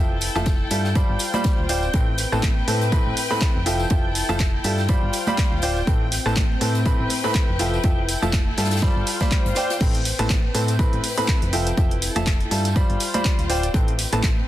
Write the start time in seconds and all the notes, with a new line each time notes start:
Already playing: F1 F3 C4 E4 F4 A4 B4 E5 G5
0.21 closed hi-hat, open hi-hat, tambourine
0.35 F1 F3 F4 A4 E5 A5, closed hi-hat, tambourine, high conga
0.46 kick, snare, closed hi-hat, tambourine
0.71 G2 G3 F4 A4 E5 A5, closed hi-hat, open hi-hat, tambourine
0.84 snare, tambourine
0.95 G3 F4 C5 D5 B5, kick, closed hi-hat, tambourine
1.09 G1
1.13 C5
1.19 closed hi-hat, open hi-hat, tambourine
1.34 G3 F4 C5 D5 B5, closed hi-hat, tambourine, high conga
1.44 kick, snare, closed hi-hat, tambourine
1.59 D1
1.69 F4 C5 D5 G5, snare, closed hi-hat, open hi-hat, tambourine
1.82 tambourine
1.94 A1 A2 C4 A4 B4 G5, kick, closed hi-hat, tambourine
2.08 B4
2.18 snare, closed hi-hat, open hi-hat, tambourine
2.32 A1 A2 C4 A4 B4 A5, tambourine, high conga
2.43 kick, snare, clap, closed hi-hat, tambourine, high conga
2.68 A2 C4 A4 B4 A5, closed hi-hat, open hi-hat, tambourine
2.81 closed hi-hat, tambourine
2.92 A2 C4 A4 B4 B5, kick, closed hi-hat, tambourine
3.06 A1
3.17 open hi-hat, tambourine
3.30 A2 C4 A4 B4 B5, tambourine
3.41 kick, snare, clap, closed hi-hat
3.55 F1
3.66 F3 E4 F4 A4 E5 G5, closed hi-hat, open hi-hat, tambourine
3.77 A4, tambourine
3.90 F1 F3 F4 A4 E5 G5, kick, closed hi-hat
4.15 closed hi-hat, open hi-hat, tambourine
4.29 F1 F3 F4 A4 E5 A5, closed hi-hat, tambourine, high conga
4.40 kick, snare, clap, closed hi-hat, tambourine
4.64 G2 G3 F4 A4 E5 A5, closed hi-hat, open hi-hat, tambourine
4.78 snare, tambourine
4.89 G3 F4 C5 D5 B5, kick, closed hi-hat, tambourine
5.03 G1 C5
5.13 closed hi-hat, open hi-hat, tambourine
5.27 G3 F4 C5 D5 B5, closed hi-hat, tambourine, high conga
5.38 kick, snare, clap, closed hi-hat, tambourine
5.52 D1
5.62 F4 C5 D5 G5, snare, closed hi-hat, open hi-hat, tambourine
5.76 tambourine
5.87 A1 A2 C4 A4 B4 G5, kick, closed hi-hat, tambourine
6.12 snare, closed hi-hat, open hi-hat, tambourine
6.26 A1 A2 C4 A4 B4 A5, tambourine, high conga
6.36 kick, snare, clap, closed hi-hat, tambourine, high conga
6.52 B4
6.61 A2 C4 A4 B4 A5, closed hi-hat, open hi-hat, tambourine
6.74 closed hi-hat, tambourine
6.85 A2 C4 A4 B4 B5, kick, closed hi-hat, tambourine
7.00 A1
7.10 open hi-hat, tambourine
7.23 A2 C4 A4 B4 B5, tambourine
7.34 kick, snare, clap
7.49 F1
7.59 F3 E4 F4 A4 E5 G5, closed hi-hat, open hi-hat, tambourine
7.73 tambourine
7.84 F1 F3 F4 A4 E5 G5, kick, closed hi-hat, tambourine
8.09 closed hi-hat, open hi-hat, tambourine
8.16 A4
8.22 F1 F3 F4 A4 E5 A5, closed hi-hat, tambourine, high conga
8.33 kick, snare, clap, closed hi-hat, tambourine, high conga
8.57 G2 G3 F4 A4 E5 A5, snare, closed hi-hat, open hi-hat, tambourine
8.65 snare, closed hi-hat
8.71 snare, closed hi-hat, tambourine
8.76 snare, closed hi-hat
8.82 G3 F4 C5 D5 B5, kick, closed hi-hat, tambourine
8.96 G1
9.07 closed hi-hat, open hi-hat, tambourine
9.21 G3 F4 C5 D5 B5, kick, snare, closed hi-hat, tambourine, high conga
9.27 C5
9.31 kick, clap, tambourine
9.45 G1, closed hi-hat
9.55 F4 C5 D5 G5, snare, closed hi-hat, open hi-hat, tambourine
9.70 snare, closed hi-hat, tambourine
9.81 A1 A2 C4 A4 B4 G5, kick, closed hi-hat, crash
9.95 closed hi-hat
10.02 B4, snare, closed hi-hat, open hi-hat, tambourine
10.19 A1 A2 C4 A4 B4 A5, closed hi-hat, tambourine, high conga
10.30 kick, snare, clap, closed hi-hat, tambourine, high conga
10.55 A2 C4 A4 B4 A5, closed hi-hat, open hi-hat, tambourine
10.68 closed hi-hat, tambourine
10.79 A2 C4 A4 B4 B5, kick, closed hi-hat, tambourine
10.93 A1, closed hi-hat
11.04 open hi-hat, tambourine
11.17 A2 C4 A4 B4 B5, closed hi-hat, tambourine
11.28 kick, snare, clap, closed hi-hat
11.42 F1, closed hi-hat
11.53 F3 E4 F4 A4 E5 G5, closed hi-hat, open hi-hat, tambourine
11.67 closed hi-hat, tambourine
11.77 F1 F3 F4 A4 E5 G5, kick, closed hi-hat, tambourine
11.91 closed hi-hat
12.02 closed hi-hat, open hi-hat, tambourine
12.09 A4
12.16 F1 F3 F4 A4 E5 A5, closed hi-hat, tambourine, high conga
12.26 kick, snare, clap, closed hi-hat, tambourine
12.40 closed hi-hat
12.51 G2 G3 F4 A4 E5 A5, closed hi-hat, open hi-hat, tambourine
12.65 snare, closed hi-hat, tambourine
12.76 G3 F4 C5 D5 B5, kick, closed hi-hat, tambourine
12.90 G1, closed hi-hat
13.00 C5, closed hi-hat, open hi-hat, tambourine
13.14 G3 F4 C5 D5 B5, closed hi-hat, tambourine, high conga
13.25 kick, snare, clap, closed hi-hat, tambourine
13.39 D1, closed hi-hat
13.50 F4 C5 D5 G5, snare, closed hi-hat, open hi-hat, tambourine
13.63 closed hi-hat, tambourine
13.74 A1 A2 C4 A4 B4 G5, kick, closed hi-hat, tambourine
13.88 closed hi-hat
13.96 B4, snare, closed hi-hat, open hi-hat, tambourine
14.12 A1 A2 C4 A4 B4 A5, closed hi-hat, tambourine, high conga
14.23 kick, snare, clap, closed hi-hat, tambourine, high conga